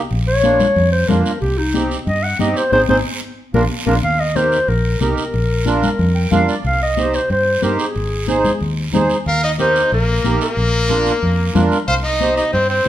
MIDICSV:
0, 0, Header, 1, 6, 480
1, 0, Start_track
1, 0, Key_signature, -3, "major"
1, 0, Tempo, 326975
1, 160, Time_signature, 4, 2, 24, 8
1, 18912, End_track
2, 0, Start_track
2, 0, Title_t, "Clarinet"
2, 0, Program_c, 0, 71
2, 402, Note_on_c, 0, 73, 110
2, 1333, Note_off_c, 0, 73, 0
2, 1351, Note_on_c, 0, 72, 83
2, 1592, Note_on_c, 0, 70, 81
2, 1614, Note_off_c, 0, 72, 0
2, 1815, Note_off_c, 0, 70, 0
2, 1824, Note_on_c, 0, 70, 73
2, 2059, Note_off_c, 0, 70, 0
2, 2068, Note_on_c, 0, 67, 102
2, 2325, Note_on_c, 0, 63, 94
2, 2347, Note_off_c, 0, 67, 0
2, 2789, Note_off_c, 0, 63, 0
2, 3049, Note_on_c, 0, 75, 86
2, 3278, Note_on_c, 0, 78, 88
2, 3300, Note_off_c, 0, 75, 0
2, 3512, Note_off_c, 0, 78, 0
2, 3528, Note_on_c, 0, 75, 75
2, 3770, Note_on_c, 0, 72, 80
2, 3792, Note_off_c, 0, 75, 0
2, 3998, Note_off_c, 0, 72, 0
2, 4005, Note_on_c, 0, 72, 101
2, 4119, Note_off_c, 0, 72, 0
2, 4246, Note_on_c, 0, 72, 96
2, 4360, Note_off_c, 0, 72, 0
2, 5206, Note_on_c, 0, 70, 96
2, 5319, Note_off_c, 0, 70, 0
2, 5678, Note_on_c, 0, 70, 90
2, 5794, Note_off_c, 0, 70, 0
2, 5927, Note_on_c, 0, 77, 109
2, 6164, Note_on_c, 0, 75, 96
2, 6186, Note_off_c, 0, 77, 0
2, 6400, Note_on_c, 0, 72, 97
2, 6423, Note_off_c, 0, 75, 0
2, 6883, Note_on_c, 0, 70, 93
2, 6905, Note_off_c, 0, 72, 0
2, 7358, Note_off_c, 0, 70, 0
2, 7367, Note_on_c, 0, 70, 82
2, 7582, Note_off_c, 0, 70, 0
2, 7591, Note_on_c, 0, 70, 90
2, 9457, Note_off_c, 0, 70, 0
2, 9784, Note_on_c, 0, 77, 105
2, 9996, Note_off_c, 0, 77, 0
2, 10020, Note_on_c, 0, 75, 102
2, 10496, Note_on_c, 0, 72, 87
2, 10518, Note_off_c, 0, 75, 0
2, 10723, Note_off_c, 0, 72, 0
2, 10732, Note_on_c, 0, 72, 93
2, 11204, Note_on_c, 0, 70, 81
2, 11226, Note_off_c, 0, 72, 0
2, 11442, Note_off_c, 0, 70, 0
2, 11449, Note_on_c, 0, 68, 74
2, 12908, Note_off_c, 0, 68, 0
2, 13616, Note_on_c, 0, 77, 109
2, 13831, Note_off_c, 0, 77, 0
2, 13861, Note_on_c, 0, 75, 94
2, 13964, Note_off_c, 0, 75, 0
2, 14100, Note_on_c, 0, 72, 98
2, 14537, Note_off_c, 0, 72, 0
2, 14580, Note_on_c, 0, 70, 88
2, 15240, Note_off_c, 0, 70, 0
2, 15304, Note_on_c, 0, 70, 92
2, 17152, Note_off_c, 0, 70, 0
2, 17436, Note_on_c, 0, 77, 109
2, 17545, Note_off_c, 0, 77, 0
2, 17677, Note_on_c, 0, 75, 95
2, 18124, Note_off_c, 0, 75, 0
2, 18154, Note_on_c, 0, 75, 96
2, 18379, Note_off_c, 0, 75, 0
2, 18394, Note_on_c, 0, 72, 89
2, 18619, Note_off_c, 0, 72, 0
2, 18637, Note_on_c, 0, 72, 97
2, 18912, Note_off_c, 0, 72, 0
2, 18912, End_track
3, 0, Start_track
3, 0, Title_t, "Accordion"
3, 0, Program_c, 1, 21
3, 626, Note_on_c, 1, 58, 71
3, 635, Note_on_c, 1, 62, 67
3, 642, Note_on_c, 1, 65, 79
3, 969, Note_off_c, 1, 58, 0
3, 974, Note_off_c, 1, 62, 0
3, 977, Note_off_c, 1, 65, 0
3, 1588, Note_on_c, 1, 58, 74
3, 1592, Note_on_c, 1, 62, 69
3, 1600, Note_on_c, 1, 65, 79
3, 1930, Note_off_c, 1, 58, 0
3, 1932, Note_off_c, 1, 62, 0
3, 1937, Note_off_c, 1, 65, 0
3, 2555, Note_on_c, 1, 60, 74
3, 2560, Note_on_c, 1, 63, 68
3, 2565, Note_on_c, 1, 67, 78
3, 2894, Note_off_c, 1, 60, 0
3, 2897, Note_off_c, 1, 63, 0
3, 2899, Note_off_c, 1, 67, 0
3, 3512, Note_on_c, 1, 60, 77
3, 3518, Note_on_c, 1, 63, 71
3, 3528, Note_on_c, 1, 67, 86
3, 3852, Note_off_c, 1, 60, 0
3, 3855, Note_off_c, 1, 63, 0
3, 3860, Note_off_c, 1, 67, 0
3, 3998, Note_on_c, 1, 68, 88
3, 3999, Note_on_c, 1, 60, 91
3, 3999, Note_on_c, 1, 63, 94
3, 4153, Note_off_c, 1, 63, 0
3, 4153, Note_off_c, 1, 68, 0
3, 4154, Note_off_c, 1, 60, 0
3, 4238, Note_on_c, 1, 60, 100
3, 4242, Note_on_c, 1, 63, 87
3, 4243, Note_on_c, 1, 68, 90
3, 4393, Note_off_c, 1, 60, 0
3, 4395, Note_off_c, 1, 63, 0
3, 4395, Note_off_c, 1, 68, 0
3, 5199, Note_on_c, 1, 58, 95
3, 5200, Note_on_c, 1, 62, 92
3, 5201, Note_on_c, 1, 65, 92
3, 5353, Note_off_c, 1, 58, 0
3, 5354, Note_off_c, 1, 62, 0
3, 5354, Note_off_c, 1, 65, 0
3, 5672, Note_on_c, 1, 62, 97
3, 5672, Note_on_c, 1, 65, 94
3, 5673, Note_on_c, 1, 58, 95
3, 5829, Note_off_c, 1, 58, 0
3, 5829, Note_off_c, 1, 62, 0
3, 5829, Note_off_c, 1, 65, 0
3, 6390, Note_on_c, 1, 63, 67
3, 6393, Note_on_c, 1, 67, 66
3, 6398, Note_on_c, 1, 70, 71
3, 6731, Note_off_c, 1, 63, 0
3, 6733, Note_off_c, 1, 67, 0
3, 6735, Note_off_c, 1, 70, 0
3, 7347, Note_on_c, 1, 63, 74
3, 7350, Note_on_c, 1, 67, 68
3, 7358, Note_on_c, 1, 70, 80
3, 7690, Note_off_c, 1, 63, 0
3, 7691, Note_off_c, 1, 67, 0
3, 7695, Note_off_c, 1, 70, 0
3, 8303, Note_on_c, 1, 62, 83
3, 8311, Note_on_c, 1, 65, 81
3, 8317, Note_on_c, 1, 70, 96
3, 8648, Note_off_c, 1, 62, 0
3, 8652, Note_off_c, 1, 65, 0
3, 8655, Note_off_c, 1, 70, 0
3, 9029, Note_on_c, 1, 79, 69
3, 9258, Note_off_c, 1, 79, 0
3, 9270, Note_on_c, 1, 62, 89
3, 9274, Note_on_c, 1, 65, 76
3, 9274, Note_on_c, 1, 77, 74
3, 9282, Note_on_c, 1, 70, 102
3, 9500, Note_off_c, 1, 77, 0
3, 9520, Note_on_c, 1, 74, 72
3, 9611, Note_off_c, 1, 62, 0
3, 9613, Note_off_c, 1, 65, 0
3, 9617, Note_off_c, 1, 70, 0
3, 9743, Note_off_c, 1, 74, 0
3, 10229, Note_on_c, 1, 63, 75
3, 10236, Note_on_c, 1, 67, 67
3, 10242, Note_on_c, 1, 72, 78
3, 10570, Note_off_c, 1, 63, 0
3, 10574, Note_off_c, 1, 67, 0
3, 10577, Note_off_c, 1, 72, 0
3, 11192, Note_on_c, 1, 63, 72
3, 11199, Note_on_c, 1, 67, 72
3, 11202, Note_on_c, 1, 72, 88
3, 11532, Note_off_c, 1, 63, 0
3, 11535, Note_off_c, 1, 67, 0
3, 11537, Note_off_c, 1, 72, 0
3, 12148, Note_on_c, 1, 63, 89
3, 12156, Note_on_c, 1, 68, 79
3, 12162, Note_on_c, 1, 72, 95
3, 12490, Note_off_c, 1, 63, 0
3, 12494, Note_off_c, 1, 68, 0
3, 12497, Note_off_c, 1, 72, 0
3, 13113, Note_on_c, 1, 63, 88
3, 13120, Note_on_c, 1, 68, 79
3, 13127, Note_on_c, 1, 72, 91
3, 13452, Note_off_c, 1, 63, 0
3, 13455, Note_off_c, 1, 68, 0
3, 13459, Note_off_c, 1, 72, 0
3, 14071, Note_on_c, 1, 63, 69
3, 14079, Note_on_c, 1, 67, 60
3, 14085, Note_on_c, 1, 70, 80
3, 14411, Note_off_c, 1, 63, 0
3, 14415, Note_off_c, 1, 67, 0
3, 14418, Note_off_c, 1, 70, 0
3, 15031, Note_on_c, 1, 63, 73
3, 15033, Note_on_c, 1, 67, 72
3, 15040, Note_on_c, 1, 70, 80
3, 15371, Note_off_c, 1, 63, 0
3, 15372, Note_off_c, 1, 67, 0
3, 15376, Note_off_c, 1, 70, 0
3, 15985, Note_on_c, 1, 62, 85
3, 15989, Note_on_c, 1, 65, 81
3, 15998, Note_on_c, 1, 70, 92
3, 16328, Note_off_c, 1, 62, 0
3, 16330, Note_off_c, 1, 65, 0
3, 16334, Note_off_c, 1, 70, 0
3, 16947, Note_on_c, 1, 62, 89
3, 16953, Note_on_c, 1, 65, 81
3, 16962, Note_on_c, 1, 70, 101
3, 17289, Note_off_c, 1, 62, 0
3, 17292, Note_off_c, 1, 65, 0
3, 17296, Note_off_c, 1, 70, 0
3, 17917, Note_on_c, 1, 63, 71
3, 17928, Note_on_c, 1, 67, 69
3, 17931, Note_on_c, 1, 72, 76
3, 18254, Note_off_c, 1, 63, 0
3, 18259, Note_off_c, 1, 67, 0
3, 18261, Note_off_c, 1, 72, 0
3, 18912, End_track
4, 0, Start_track
4, 0, Title_t, "Trumpet"
4, 0, Program_c, 2, 56
4, 13617, Note_on_c, 2, 70, 91
4, 13832, Note_off_c, 2, 70, 0
4, 13850, Note_on_c, 2, 63, 83
4, 13956, Note_off_c, 2, 63, 0
4, 14092, Note_on_c, 2, 63, 74
4, 14532, Note_off_c, 2, 63, 0
4, 14575, Note_on_c, 2, 58, 81
4, 15237, Note_off_c, 2, 58, 0
4, 15290, Note_on_c, 2, 58, 93
4, 17146, Note_off_c, 2, 58, 0
4, 17434, Note_on_c, 2, 72, 88
4, 17543, Note_off_c, 2, 72, 0
4, 17669, Note_on_c, 2, 63, 85
4, 18120, Note_off_c, 2, 63, 0
4, 18157, Note_on_c, 2, 63, 70
4, 18381, Note_off_c, 2, 63, 0
4, 18390, Note_on_c, 2, 60, 77
4, 18617, Note_off_c, 2, 60, 0
4, 18639, Note_on_c, 2, 60, 77
4, 18912, Note_off_c, 2, 60, 0
4, 18912, End_track
5, 0, Start_track
5, 0, Title_t, "Fingered electric bass"
5, 0, Program_c, 3, 33
5, 160, Note_on_c, 3, 34, 91
5, 929, Note_off_c, 3, 34, 0
5, 1119, Note_on_c, 3, 41, 104
5, 1504, Note_off_c, 3, 41, 0
5, 1599, Note_on_c, 3, 41, 92
5, 1792, Note_off_c, 3, 41, 0
5, 2082, Note_on_c, 3, 36, 89
5, 2850, Note_off_c, 3, 36, 0
5, 3036, Note_on_c, 3, 43, 99
5, 3422, Note_off_c, 3, 43, 0
5, 3518, Note_on_c, 3, 43, 95
5, 3711, Note_off_c, 3, 43, 0
5, 3996, Note_on_c, 3, 32, 89
5, 4177, Note_off_c, 3, 32, 0
5, 4238, Note_on_c, 3, 32, 99
5, 4418, Note_off_c, 3, 32, 0
5, 5194, Note_on_c, 3, 34, 98
5, 5376, Note_off_c, 3, 34, 0
5, 5676, Note_on_c, 3, 34, 94
5, 5856, Note_off_c, 3, 34, 0
5, 5920, Note_on_c, 3, 39, 91
5, 6688, Note_off_c, 3, 39, 0
5, 6874, Note_on_c, 3, 34, 104
5, 7260, Note_off_c, 3, 34, 0
5, 7350, Note_on_c, 3, 36, 81
5, 7546, Note_off_c, 3, 36, 0
5, 7835, Note_on_c, 3, 34, 86
5, 8605, Note_off_c, 3, 34, 0
5, 8794, Note_on_c, 3, 41, 102
5, 9180, Note_off_c, 3, 41, 0
5, 9271, Note_on_c, 3, 41, 84
5, 9467, Note_off_c, 3, 41, 0
5, 9754, Note_on_c, 3, 36, 92
5, 10524, Note_off_c, 3, 36, 0
5, 10714, Note_on_c, 3, 43, 100
5, 11100, Note_off_c, 3, 43, 0
5, 11195, Note_on_c, 3, 43, 91
5, 11389, Note_off_c, 3, 43, 0
5, 11683, Note_on_c, 3, 32, 84
5, 12449, Note_off_c, 3, 32, 0
5, 12643, Note_on_c, 3, 39, 99
5, 13025, Note_off_c, 3, 39, 0
5, 13122, Note_on_c, 3, 39, 85
5, 13313, Note_off_c, 3, 39, 0
5, 13596, Note_on_c, 3, 39, 86
5, 14365, Note_off_c, 3, 39, 0
5, 14565, Note_on_c, 3, 34, 105
5, 14946, Note_off_c, 3, 34, 0
5, 15036, Note_on_c, 3, 34, 85
5, 15229, Note_off_c, 3, 34, 0
5, 15514, Note_on_c, 3, 34, 81
5, 16284, Note_off_c, 3, 34, 0
5, 16478, Note_on_c, 3, 41, 100
5, 16863, Note_off_c, 3, 41, 0
5, 16956, Note_on_c, 3, 41, 87
5, 17149, Note_off_c, 3, 41, 0
5, 17437, Note_on_c, 3, 36, 86
5, 18205, Note_off_c, 3, 36, 0
5, 18402, Note_on_c, 3, 43, 101
5, 18785, Note_off_c, 3, 43, 0
5, 18912, End_track
6, 0, Start_track
6, 0, Title_t, "Drums"
6, 156, Note_on_c, 9, 74, 72
6, 157, Note_on_c, 9, 63, 34
6, 303, Note_off_c, 9, 63, 0
6, 303, Note_off_c, 9, 74, 0
6, 636, Note_on_c, 9, 73, 70
6, 639, Note_on_c, 9, 63, 80
6, 783, Note_off_c, 9, 73, 0
6, 786, Note_off_c, 9, 63, 0
6, 877, Note_on_c, 9, 64, 70
6, 878, Note_on_c, 9, 73, 69
6, 1024, Note_off_c, 9, 64, 0
6, 1025, Note_off_c, 9, 73, 0
6, 1118, Note_on_c, 9, 63, 34
6, 1122, Note_on_c, 9, 74, 70
6, 1265, Note_off_c, 9, 63, 0
6, 1268, Note_off_c, 9, 74, 0
6, 1597, Note_on_c, 9, 63, 79
6, 1597, Note_on_c, 9, 64, 85
6, 1601, Note_on_c, 9, 73, 68
6, 1744, Note_off_c, 9, 63, 0
6, 1744, Note_off_c, 9, 64, 0
6, 1748, Note_off_c, 9, 73, 0
6, 1844, Note_on_c, 9, 73, 74
6, 1990, Note_off_c, 9, 73, 0
6, 2081, Note_on_c, 9, 74, 68
6, 2084, Note_on_c, 9, 63, 35
6, 2228, Note_off_c, 9, 74, 0
6, 2231, Note_off_c, 9, 63, 0
6, 2557, Note_on_c, 9, 63, 80
6, 2564, Note_on_c, 9, 73, 73
6, 2704, Note_off_c, 9, 63, 0
6, 2711, Note_off_c, 9, 73, 0
6, 2807, Note_on_c, 9, 73, 68
6, 2954, Note_off_c, 9, 73, 0
6, 3041, Note_on_c, 9, 63, 34
6, 3042, Note_on_c, 9, 74, 68
6, 3187, Note_off_c, 9, 63, 0
6, 3189, Note_off_c, 9, 74, 0
6, 3514, Note_on_c, 9, 63, 81
6, 3524, Note_on_c, 9, 73, 73
6, 3660, Note_off_c, 9, 63, 0
6, 3671, Note_off_c, 9, 73, 0
6, 3765, Note_on_c, 9, 73, 73
6, 3911, Note_off_c, 9, 73, 0
6, 4000, Note_on_c, 9, 63, 97
6, 4006, Note_on_c, 9, 74, 98
6, 4147, Note_off_c, 9, 63, 0
6, 4153, Note_off_c, 9, 74, 0
6, 4239, Note_on_c, 9, 63, 99
6, 4243, Note_on_c, 9, 74, 101
6, 4386, Note_off_c, 9, 63, 0
6, 4390, Note_off_c, 9, 74, 0
6, 5197, Note_on_c, 9, 74, 100
6, 5200, Note_on_c, 9, 63, 99
6, 5344, Note_off_c, 9, 74, 0
6, 5347, Note_off_c, 9, 63, 0
6, 5678, Note_on_c, 9, 63, 104
6, 5825, Note_off_c, 9, 63, 0
6, 5920, Note_on_c, 9, 63, 35
6, 5923, Note_on_c, 9, 74, 62
6, 6067, Note_off_c, 9, 63, 0
6, 6070, Note_off_c, 9, 74, 0
6, 6400, Note_on_c, 9, 63, 79
6, 6400, Note_on_c, 9, 73, 69
6, 6547, Note_off_c, 9, 63, 0
6, 6547, Note_off_c, 9, 73, 0
6, 6637, Note_on_c, 9, 73, 66
6, 6783, Note_off_c, 9, 73, 0
6, 6876, Note_on_c, 9, 74, 66
6, 6879, Note_on_c, 9, 63, 33
6, 7023, Note_off_c, 9, 74, 0
6, 7026, Note_off_c, 9, 63, 0
6, 7354, Note_on_c, 9, 73, 71
6, 7356, Note_on_c, 9, 63, 79
6, 7501, Note_off_c, 9, 73, 0
6, 7502, Note_off_c, 9, 63, 0
6, 7595, Note_on_c, 9, 73, 69
6, 7742, Note_off_c, 9, 73, 0
6, 7834, Note_on_c, 9, 63, 35
6, 7835, Note_on_c, 9, 74, 66
6, 7981, Note_off_c, 9, 63, 0
6, 7982, Note_off_c, 9, 74, 0
6, 8309, Note_on_c, 9, 63, 81
6, 8318, Note_on_c, 9, 73, 72
6, 8456, Note_off_c, 9, 63, 0
6, 8465, Note_off_c, 9, 73, 0
6, 8550, Note_on_c, 9, 64, 68
6, 8558, Note_on_c, 9, 73, 70
6, 8697, Note_off_c, 9, 64, 0
6, 8705, Note_off_c, 9, 73, 0
6, 8794, Note_on_c, 9, 63, 31
6, 8798, Note_on_c, 9, 74, 65
6, 8941, Note_off_c, 9, 63, 0
6, 8945, Note_off_c, 9, 74, 0
6, 9277, Note_on_c, 9, 73, 67
6, 9278, Note_on_c, 9, 63, 76
6, 9278, Note_on_c, 9, 64, 78
6, 9424, Note_off_c, 9, 63, 0
6, 9424, Note_off_c, 9, 64, 0
6, 9424, Note_off_c, 9, 73, 0
6, 9517, Note_on_c, 9, 73, 70
6, 9664, Note_off_c, 9, 73, 0
6, 9757, Note_on_c, 9, 74, 70
6, 9762, Note_on_c, 9, 63, 35
6, 9904, Note_off_c, 9, 74, 0
6, 9909, Note_off_c, 9, 63, 0
6, 10234, Note_on_c, 9, 73, 70
6, 10236, Note_on_c, 9, 63, 83
6, 10381, Note_off_c, 9, 73, 0
6, 10383, Note_off_c, 9, 63, 0
6, 10475, Note_on_c, 9, 73, 67
6, 10622, Note_off_c, 9, 73, 0
6, 10716, Note_on_c, 9, 74, 65
6, 10717, Note_on_c, 9, 63, 32
6, 10863, Note_off_c, 9, 74, 0
6, 10864, Note_off_c, 9, 63, 0
6, 11190, Note_on_c, 9, 63, 74
6, 11193, Note_on_c, 9, 73, 70
6, 11337, Note_off_c, 9, 63, 0
6, 11340, Note_off_c, 9, 73, 0
6, 11435, Note_on_c, 9, 73, 71
6, 11582, Note_off_c, 9, 73, 0
6, 11677, Note_on_c, 9, 63, 34
6, 11678, Note_on_c, 9, 74, 69
6, 11824, Note_off_c, 9, 63, 0
6, 11825, Note_off_c, 9, 74, 0
6, 12155, Note_on_c, 9, 63, 82
6, 12159, Note_on_c, 9, 73, 69
6, 12302, Note_off_c, 9, 63, 0
6, 12306, Note_off_c, 9, 73, 0
6, 12398, Note_on_c, 9, 64, 71
6, 12399, Note_on_c, 9, 73, 72
6, 12544, Note_off_c, 9, 64, 0
6, 12546, Note_off_c, 9, 73, 0
6, 12634, Note_on_c, 9, 74, 65
6, 12636, Note_on_c, 9, 63, 32
6, 12781, Note_off_c, 9, 74, 0
6, 12783, Note_off_c, 9, 63, 0
6, 13114, Note_on_c, 9, 73, 72
6, 13119, Note_on_c, 9, 63, 82
6, 13119, Note_on_c, 9, 64, 72
6, 13261, Note_off_c, 9, 73, 0
6, 13266, Note_off_c, 9, 63, 0
6, 13266, Note_off_c, 9, 64, 0
6, 13353, Note_on_c, 9, 73, 69
6, 13500, Note_off_c, 9, 73, 0
6, 13595, Note_on_c, 9, 74, 65
6, 13603, Note_on_c, 9, 63, 35
6, 13742, Note_off_c, 9, 74, 0
6, 13749, Note_off_c, 9, 63, 0
6, 14074, Note_on_c, 9, 73, 67
6, 14081, Note_on_c, 9, 63, 79
6, 14221, Note_off_c, 9, 73, 0
6, 14228, Note_off_c, 9, 63, 0
6, 14320, Note_on_c, 9, 73, 71
6, 14466, Note_off_c, 9, 73, 0
6, 14557, Note_on_c, 9, 74, 71
6, 14562, Note_on_c, 9, 63, 35
6, 14704, Note_off_c, 9, 74, 0
6, 14709, Note_off_c, 9, 63, 0
6, 15038, Note_on_c, 9, 73, 69
6, 15041, Note_on_c, 9, 63, 76
6, 15185, Note_off_c, 9, 73, 0
6, 15188, Note_off_c, 9, 63, 0
6, 15280, Note_on_c, 9, 73, 76
6, 15427, Note_off_c, 9, 73, 0
6, 15521, Note_on_c, 9, 74, 70
6, 15526, Note_on_c, 9, 63, 35
6, 15668, Note_off_c, 9, 74, 0
6, 15673, Note_off_c, 9, 63, 0
6, 15996, Note_on_c, 9, 73, 71
6, 16001, Note_on_c, 9, 63, 78
6, 16143, Note_off_c, 9, 73, 0
6, 16148, Note_off_c, 9, 63, 0
6, 16236, Note_on_c, 9, 73, 70
6, 16382, Note_off_c, 9, 73, 0
6, 16482, Note_on_c, 9, 74, 67
6, 16628, Note_off_c, 9, 74, 0
6, 16959, Note_on_c, 9, 73, 70
6, 16963, Note_on_c, 9, 63, 77
6, 16963, Note_on_c, 9, 64, 84
6, 17106, Note_off_c, 9, 73, 0
6, 17109, Note_off_c, 9, 63, 0
6, 17109, Note_off_c, 9, 64, 0
6, 17200, Note_on_c, 9, 73, 69
6, 17347, Note_off_c, 9, 73, 0
6, 17441, Note_on_c, 9, 74, 66
6, 17445, Note_on_c, 9, 63, 35
6, 17588, Note_off_c, 9, 74, 0
6, 17592, Note_off_c, 9, 63, 0
6, 17919, Note_on_c, 9, 63, 85
6, 17922, Note_on_c, 9, 73, 71
6, 18066, Note_off_c, 9, 63, 0
6, 18069, Note_off_c, 9, 73, 0
6, 18162, Note_on_c, 9, 73, 69
6, 18309, Note_off_c, 9, 73, 0
6, 18394, Note_on_c, 9, 63, 34
6, 18399, Note_on_c, 9, 74, 68
6, 18541, Note_off_c, 9, 63, 0
6, 18546, Note_off_c, 9, 74, 0
6, 18912, End_track
0, 0, End_of_file